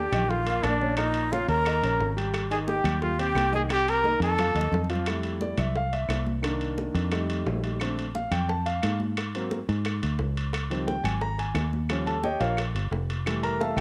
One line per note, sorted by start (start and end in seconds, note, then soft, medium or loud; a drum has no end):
0.00 0.31 G4 medium
0.00 0.32 G5 medium
0.12 0.60 A#1 medium
0.12 0.40 D#3 medium
0.12 0.40 D#4 medium
0.12 0.41 D#5 medium
0.12 high conga soft
0.12 low conga medium
0.12 high timbale medium
0.12 claves medium
0.29 0.65 F4 medium
0.29 0.65 F5 medium
0.29 high bongo medium
0.29 high conga soft
0.46 0.74 A#2 medium
0.46 0.75 A#3 medium
0.46 0.75 A#4 medium
0.46 high bongo soft
0.46 high conga soft
0.46 high timbale medium
0.63 1.43 A#1 medium
0.63 0.96 D4 medium
0.63 0.98 D5 medium
0.63 high bongo medium
0.63 low bongo medium
0.63 high conga medium
0.63 high timbale medium
0.63 claves medium
0.81 0.95 C#3 medium
0.81 0.95 C#4 medium
0.81 0.95 C#5 medium
0.81 high conga medium
0.97 1.25 A#2 medium
0.97 1.26 A#3 medium
0.97 1.33 D#4 medium
0.97 1.26 A#4 medium
0.97 1.34 D#5 medium
0.97 high bongo medium
0.97 high conga soft
0.97 high timbale medium
0.97 claves medium
1.14 high conga soft
1.14 high timbale medium
1.31 1.60 C#3 medium
1.31 1.60 C#4 medium
1.31 1.48 F4 loud
1.31 1.60 C#5 medium
1.31 1.48 F5 medium
1.31 high bongo medium
1.31 high conga loud
1.48 1.80 D#2 medium
1.48 2.13 A#4 medium
1.48 2.13 A#5 medium
1.48 high bongo soft
1.48 high conga soft
1.48 high timbale medium
1.65 1.80 D#3 medium
1.65 1.80 D#4 medium
1.65 1.80 D#5 medium
1.65 high bongo medium
1.65 high conga soft
1.65 high timbale medium
1.65 claves medium
1.82 1.99 A#1 medium
1.82 2.11 C#3 medium
1.82 2.11 C#4 medium
1.82 2.11 C#5 medium
1.82 high bongo soft
1.82 high conga soft
1.82 high timbale medium
1.99 2.79 G#1 medium
1.99 high bongo medium
1.99 low bongo medium
1.99 high conga soft
2.17 2.45 G3 medium
2.17 2.45 G4 medium
2.17 2.45 G5 medium
2.17 high bongo soft
2.17 high conga soft
2.17 high timbale medium
2.34 high bongo medium
2.34 high conga soft
2.34 high timbale loud
2.34 claves medium
2.51 2.79 D#3 medium
2.51 2.79 D#4 medium
2.51 2.59 G#4 medium
2.51 2.79 D#5 medium
2.51 2.57 G#5 medium
2.51 high bongo soft
2.51 high conga soft
2.51 high timbale medium
2.68 3.00 G4 medium
2.68 3.01 G5 medium
2.68 high bongo medium
2.68 high conga loud
2.84 3.32 D#2 loud
2.84 3.13 G3 medium
2.84 3.14 G4 medium
2.84 3.14 G5 medium
2.84 high conga soft
2.84 low conga medium
2.84 high timbale medium
2.84 claves medium
3.02 3.21 F4 medium
3.02 3.21 F5 medium
3.02 high bongo medium
3.02 high conga soft
3.02 low conga medium
3.19 3.47 C3 medium
3.19 3.47 C4 medium
3.19 3.54 G4 medium
3.19 3.47 C5 medium
3.19 3.52 G5 medium
3.19 high bongo soft
3.19 high conga soft
3.19 high timbale medium
3.35 4.15 C2 medium
3.35 high bongo medium
3.35 low bongo medium
3.35 high conga medium
3.35 high timbale medium
3.35 claves medium
3.52 3.66 D#3 medium
3.52 3.67 D#4 medium
3.52 3.62 G#4 medium
3.52 3.67 D#5 medium
3.52 3.59 G#5 medium
3.52 high conga medium
3.69 3.98 C3 medium
3.69 3.98 C4 medium
3.69 3.91 G4 loud
3.69 3.98 C5 medium
3.69 3.90 G5 medium
3.69 high bongo medium
3.69 high conga soft
3.69 high timbale medium
3.69 claves medium
3.88 4.22 A#4 loud
3.88 4.22 A#5 loud
3.88 high conga soft
3.88 high timbale medium
4.04 4.32 D#3 medium
4.04 4.32 D#4 medium
4.04 4.32 D#5 medium
4.04 high bongo medium
4.04 high conga medium
4.20 4.53 F2 medium
4.20 4.86 A4 loud
4.20 4.86 A5 medium
4.20 high bongo soft
4.20 high timbale medium
4.38 4.53 F3 medium
4.38 4.53 F4 medium
4.38 4.53 F5 medium
4.38 high bongo medium
4.38 low conga loud
4.38 high timbale medium
4.38 claves medium
4.55 4.71 D#2 medium
4.55 4.83 D#3 medium
4.55 4.84 D#4 medium
4.55 4.84 D#5 medium
4.55 high bongo soft
4.55 high timbale medium
4.61 low conga medium
4.72 5.52 F2 medium
4.72 high bongo medium
4.72 low bongo medium
4.72 low conga loud
4.84 low conga medium
4.90 5.04 F3 medium
4.90 5.04 F4 medium
4.90 5.04 F5 medium
4.90 high bongo soft
4.90 high timbale medium
4.95 low conga medium
5.06 5.55 G3 medium
5.06 5.56 A3 soft
5.06 5.56 E4 medium
5.06 high bongo medium
5.06 high timbale loud
5.06 claves medium
5.23 high bongo soft
5.23 high conga soft
5.23 high timbale medium
5.41 5.58 D5 medium
5.41 high bongo medium
5.41 high conga medium
5.58 6.06 C2 medium
5.58 5.75 E5 medium
5.58 high bongo soft
5.58 high conga soft
5.58 low conga medium
5.58 high timbale medium
5.58 claves medium
5.76 5.93 F5 medium
5.76 high bongo medium
5.76 high conga soft
5.93 6.24 E5 medium
5.93 high bongo soft
5.93 high conga soft
5.93 high timbale medium
6.08 6.89 C2 medium
6.08 high bongo medium
6.08 low bongo medium
6.08 high conga medium
6.08 high timbale medium
6.08 claves medium
6.27 high conga medium
6.42 7.08 D#3 medium
6.42 7.08 A#3 medium
6.42 7.09 D4 medium
6.42 high bongo medium
6.42 high timbale medium
6.42 claves medium
6.61 high conga soft
6.61 high timbale medium
6.78 high bongo medium
6.78 high conga loud
6.94 7.42 F2 loud
6.94 high bongo soft
6.94 high timbale medium
7.11 7.76 G3 medium
7.11 7.77 A3 soft
7.11 7.77 D#4 medium
7.11 high bongo medium
7.11 high timbale medium
7.11 claves medium
7.29 high bongo soft
7.29 high conga soft
7.29 high timbale medium
7.46 8.26 A#1 medium
7.46 high bongo medium
7.46 low bongo medium
7.46 high conga soft
7.46 low timbale medium
7.64 high bongo soft
7.64 high conga soft
7.64 high timbale medium
7.80 8.03 D3 medium
7.80 8.04 A3 soft
7.80 8.04 C4 medium
7.80 high bongo medium
7.80 high conga soft
7.80 high timbale medium
7.80 claves medium
7.97 high bongo soft
7.97 high conga soft
7.97 high timbale medium
8.15 8.31 F5 medium
8.15 high bongo medium
8.15 high conga medium
8.31 8.79 F2 medium
8.31 8.48 G5 medium
8.31 high bongo soft
8.31 high conga soft
8.31 low conga medium
8.31 high timbale medium
8.31 claves medium
8.49 8.65 A5 medium
8.49 high bongo medium
8.49 high conga soft
8.66 8.98 F5 medium
8.66 high bongo soft
8.66 high conga soft
8.66 high timbale medium
8.83 9.63 G#2 medium
8.83 high bongo medium
8.83 low bongo medium
8.83 high conga medium
8.83 high timbale loud
8.83 claves medium
9.00 high conga medium
9.17 high bongo medium
9.17 high conga soft
9.17 high timbale medium
9.17 claves medium
9.34 9.57 F#3 medium
9.34 9.57 A#3 soft
9.34 9.58 C4 medium
9.34 high conga soft
9.34 high timbale medium
9.51 high bongo medium
9.51 high conga loud
9.69 10.00 G#2 medium
9.69 high bongo soft
9.69 high timbale medium
9.85 high bongo medium
9.85 high timbale medium
9.85 claves medium
10.02 10.19 D2 medium
10.02 high bongo soft
10.02 high conga soft
10.02 high timbale medium
10.19 10.99 C#2 medium
10.19 high bongo medium
10.19 low bongo medium
10.19 high conga soft
10.36 high bongo soft
10.36 high conga soft
10.36 high timbale medium
10.53 high bongo medium
10.53 high conga soft
10.53 high timbale medium
10.53 claves medium
10.70 10.93 D#3 medium
10.70 10.93 F3 soft
10.70 10.94 G3 medium
10.70 10.94 C4 medium
10.70 high bongo soft
10.70 high conga soft
10.70 high timbale medium
10.87 11.04 G5 medium
10.87 high bongo medium
10.87 high conga loud
11.04 11.52 G#1 medium
11.04 11.21 G#5 medium
11.04 high bongo soft
11.04 high conga soft
11.04 low conga medium
11.04 high timbale medium
11.04 claves medium
11.21 11.38 A#5 loud
11.21 high bongo medium
11.21 high conga soft
11.38 11.71 G#5 medium
11.38 high bongo soft
11.38 high conga soft
11.38 high timbale medium
11.54 12.35 D#2 medium
11.54 high bongo medium
11.54 low bongo medium
11.54 high conga medium
11.54 high timbale medium
11.54 claves medium
11.73 high conga medium
11.89 12.13 F3 medium
11.89 12.13 G3 medium
11.89 12.13 C#4 medium
11.89 high bongo medium
11.89 high conga soft
11.89 high timbale loud
11.89 claves medium
12.06 12.23 A4 medium
12.06 12.23 A5 medium
12.06 high conga soft
12.06 high timbale medium
12.23 12.41 G4 medium
12.23 12.39 C#5 medium
12.23 12.41 D#5 medium
12.23 12.40 G5 medium
12.23 high bongo medium
12.23 high conga loud
12.40 12.73 A#1 loud
12.40 12.58 F4 medium
12.40 12.58 A#4 medium
12.40 12.57 C#5 medium
12.40 12.57 F5 medium
12.40 high bongo soft
12.40 high timbale medium
12.57 high bongo medium
12.57 high conga soft
12.57 high timbale medium
12.57 claves medium
12.75 12.91 G1 medium
12.75 high bongo soft
12.75 high conga soft
12.75 high timbale medium
12.91 13.71 F1 medium
12.91 high bongo medium
12.91 low bongo medium
12.91 high conga soft
13.10 high bongo soft
13.10 high conga soft
13.10 high timbale medium
13.26 13.75 E3 medium
13.26 13.75 G3 medium
13.26 13.76 A3 medium
13.26 high bongo medium
13.26 high conga soft
13.26 high timbale medium
13.26 claves medium
13.43 13.60 A#4 medium
13.43 13.60 A#5 loud
13.43 high bongo soft
13.43 high timbale medium
13.60 13.77 A4 medium
13.60 13.77 E5 medium
13.60 13.77 F5 medium
13.60 13.77 A5 medium
13.60 high bongo medium
13.60 high conga medium
13.77 13.81 C2 medium
13.77 13.81 G5 loud
13.77 claves medium